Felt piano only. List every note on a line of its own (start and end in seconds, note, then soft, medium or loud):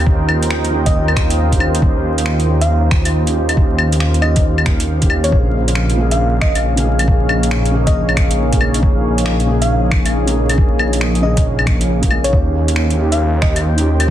0.00 0.03 D#3 medium
0.00 0.68 D#3 medium
0.00 0.07 C#4 medium
0.00 0.11 G4 loud
0.07 0.70 C#4 medium
0.11 0.72 G4 medium
0.70 1.13 D#3 medium
0.70 1.14 C#4 medium
0.74 1.15 G4 loud
1.50 1.57 D#3 medium
1.50 1.58 C#4 medium
1.54 1.77 D#3 medium
1.54 1.59 G4 loud
1.60 1.80 C#4 medium
1.60 1.81 G4 loud
1.79 2.44 D#3 medium
1.79 2.46 C#4 medium
1.86 2.48 G4 medium
2.46 2.89 D#3 loud
2.46 2.90 C#4 medium
2.50 2.91 G4 loud
3.25 3.32 D#3 medium
3.25 3.33 C#4 medium
3.25 3.34 G4 medium
3.33 3.52 D#3 medium
3.33 3.55 C#4 medium
3.37 3.56 G4 loud
3.54 4.19 D#3 medium
3.54 4.21 C#4 medium
3.62 4.23 G4 medium
4.21 4.64 D#3 medium
4.21 4.65 C#4 medium
4.21 4.66 G4 loud
5.01 5.07 D#3 medium
5.01 5.08 C#4 medium
5.01 5.09 G4 medium
5.09 5.29 D#3 medium
5.09 5.30 C#4 medium
5.09 5.31 G4 loud
5.28 5.94 C#3 medium
5.28 5.96 A#3 medium
5.36 5.98 G#4 medium
5.96 6.39 C#3 medium
5.96 6.40 A#3 medium
6.00 6.41 G#4 loud
6.76 6.82 C#3 medium
6.76 6.84 A#3 medium
6.80 7.02 C#3 medium
6.80 6.85 G#4 loud
6.86 7.06 A#3 medium
6.86 7.07 G#4 loud
7.04 7.69 C#3 medium
7.04 7.71 A#3 medium
7.12 7.73 G#4 medium
7.71 8.14 C#3 loud
7.71 8.15 A#3 medium
7.71 8.16 G#4 loud
8.51 8.58 C#3 medium
8.51 8.59 A#3 medium
8.55 8.78 C#3 medium
8.55 8.60 G#4 medium
8.61 8.81 A#3 medium
8.61 8.82 G#4 loud
8.79 9.45 C#3 medium
8.83 9.47 A#3 medium
8.83 9.49 G#4 medium
9.47 9.89 C#3 medium
9.47 9.90 A#3 medium
9.47 9.91 G#4 loud
10.26 10.32 C#3 medium
10.26 10.34 A#3 medium
10.30 10.53 C#3 medium
10.30 10.35 G#4 loud
10.36 10.56 A#3 medium
10.36 10.57 G#4 loud
10.54 11.20 C#3 medium
10.54 11.22 A#3 medium
10.62 11.24 G#4 medium
11.21 11.64 C#3 loud
11.21 11.65 A#3 medium
11.21 11.66 G#4 loud
12.01 12.07 C#3 medium
12.01 12.09 A#3 medium
12.01 12.10 G#4 medium
12.09 12.30 C#3 medium
12.09 12.31 A#3 medium
12.13 12.32 G#4 loud
12.29 12.95 D#3 medium
12.33 12.97 C#4 medium
12.37 12.99 G4 medium
12.96 13.39 D#3 medium
12.96 13.40 C#4 medium
12.96 13.41 G4 loud
13.76 13.82 D#3 medium
13.76 13.84 C#4 medium
13.76 13.85 G4 loud
13.84 14.03 D#3 medium
13.84 14.06 C#4 medium
13.84 14.07 G4 loud
14.05 14.11 D#3 medium